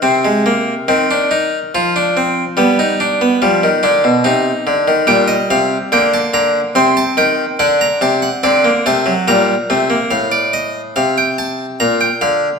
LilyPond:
<<
  \new Staff \with { instrumentName = "Harpsichord" } { \time 3/4 \key c \minor \tempo 4 = 71 << { r2. | r2. | g''16 ees''16 f''8 g''16 a''16 bes''8 c'''16 a''16 g''8 | fis''16 bes''16 a''16 fis''16 d''8 a''8 bes''4 |
f''16 d''16 ees''8 f''16 g''16 a''8 bes''16 g''16 f''8 | } \\ { c'16 aes16 bes8 c'16 d'16 ees'8 f'16 d'16 c'8 | b16 ees'16 d'16 b16 g8 d'8 ees'4 | g4 bes4 c'4 | d'4 c'16 bes16 a16 fis16 g8 a16 bes16 |
r2. | } >> }
  \new Staff \with { instrumentName = "Harpsichord" } { \clef bass \time 3/4 \key c \minor c4 ees4 f4 | g4 f16 ees16 d16 b,16 c8 d16 ees16 | bes,8 c8 d8 d8 c8 ees8 | d8 c8 d8 c8 bes,8 c8 |
a,4 c4 bes,8 d8 | }
>>